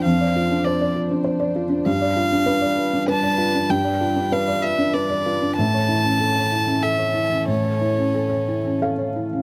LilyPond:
<<
  \new Staff \with { instrumentName = "Violin" } { \time 3/4 \key a \phrygian \tempo 4 = 96 f''4 d''8 r4. | f''2 a''4 | g''4 f''8 e''8 d''4 | a''2 e''4 |
cis''2 r4 | }
  \new Staff \with { instrumentName = "Felt piano" } { \time 3/4 \key a \phrygian << { r2. | r2. | r2. | r2. |
r2 f''4 | } \\ { <f, d'>16 d''16 f'16 d'16 c''16 d''16 f'16 d'16 c''16 d''16 f'16 d'16 | g,16 d''16 f'16 d'16 b'16 d''16 f'16 d'16 b'16 d''16 f'16 d'16 | g,16 d''16 f'16 d'16 b'16 d''16 f'16 d'16 b'16 d''16 f'16 d'16 | a,16 cis''16 e'16 cis'16 a'16 cis''16 e'16 cis'16 a'16 cis''16 e'16 cis'16 |
a,16 cis''16 e'16 cis'16 a'16 cis''16 e'16 cis'16 a'16 cis''16 e'16 cis'16 | } >> }
  \new Staff \with { instrumentName = "String section" } { \time 3/4 \key a \phrygian <f d' c''>2. | <g d' b'>2.~ | <g d' b'>2. | <e cis' a'>2.~ |
<e cis' a'>2. | }
>>